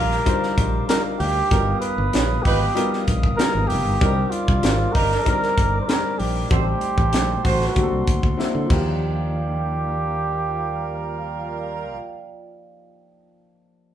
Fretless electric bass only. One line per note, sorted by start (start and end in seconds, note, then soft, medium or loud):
0.00 0.16 A#1 medium
0.57 0.79 A#1 loud
1.20 1.41 D2 medium
1.51 1.72 G1 loud
1.98 2.09 G1 loud
2.15 2.36 A#1 medium
2.45 2.66 G#1 medium
3.08 3.29 A#1 medium
3.55 3.65 G#1 loud
3.70 3.81 F1 loud
3.85 3.96 G1 medium
4.01 4.23 C2 medium
4.48 4.59 C2 medium
4.63 4.84 G#1 medium
4.95 5.16 G1 medium
5.57 5.79 G1 medium
6.20 6.41 A#1 medium
6.51 6.72 A1 medium
6.98 7.14 A1 loud
7.14 7.35 A#1 medium
7.45 7.66 A1 medium
7.76 7.87 D2 loud
7.91 8.02 C2 medium
8.07 8.18 D2 medium
8.23 8.34 D2 medium
8.55 8.65 D3 medium
8.70 11.96 D#2 loud